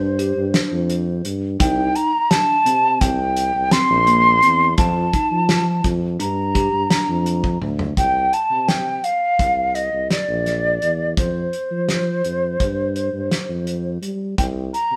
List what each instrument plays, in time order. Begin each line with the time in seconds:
Already playing: tuba G2, flute C5
0.19 tine electric piano G4, closed hi-hat
0.36 tuba G2
0.54 tine electric piano D4, snare, closed hi-hat
0.72 tuba F2
0.90 closed hi-hat
1.25 tuba G2, closed hi-hat
1.60 tuba C2, tine electric piano D#4, flute G5, kick, closed hi-hat
1.96 flute A#5, closed hi-hat
2.30 tine electric piano D4, flute A5, snare, closed hi-hat
2.66 tuba C3, tine electric piano C4, closed hi-hat
3.01 tuba C2, flute G5, kick, closed hi-hat
3.37 closed hi-hat
3.55 tuba C2
3.71 tine electric piano C4, flute C6, snare, closed hi-hat
3.90 tuba A#1
4.07 tine electric piano A#3, closed hi-hat
4.42 tuba E2, tine electric piano C4, closed hi-hat
4.78 tuba F2, tine electric piano F4, flute A5, kick, closed hi-hat
5.13 tine electric piano D#4, kick, closed hi-hat
5.31 tuba F3
5.49 tine electric piano F4, snare, closed hi-hat
5.84 tuba F2, kick, closed hi-hat
6.20 tuba G2, tine electric piano D4, flute A#5, closed hi-hat
6.55 tine electric piano G4, kick, closed hi-hat
6.73 tuba G2
6.90 tine electric piano D4, snare, closed hi-hat
7.09 tuba F2
7.26 closed hi-hat
7.44 kick
7.62 tuba D2, mid tom
7.79 floor tom
7.97 tuba C2, flute G5, kick, closed hi-hat
8.33 flute A5, closed hi-hat
8.51 tuba C3
8.68 flute G5, snare, closed hi-hat
9.04 flute F5, closed hi-hat
9.39 tuba C2, kick, closed hi-hat
9.75 flute D#5, closed hi-hat
9.93 tuba C2
10.11 flute D5, snare, closed hi-hat
10.28 tuba A#1
10.46 snare, closed hi-hat
10.82 tuba E2, closed hi-hat
11.17 tuba F2, flute C5, kick, closed hi-hat
11.53 closed hi-hat
11.71 tuba F3
11.89 snare, closed hi-hat
12.24 tuba F2, closed hi-hat
12.60 tuba G2, kick, closed hi-hat
12.96 closed hi-hat
13.13 tuba G2
13.31 snare, closed hi-hat
13.49 tuba F2
13.67 closed hi-hat
14.02 tuba G3, closed hi-hat
14.38 tuba C2, flute G5, kick, closed hi-hat
14.74 flute A#5, closed hi-hat
14.91 tuba C3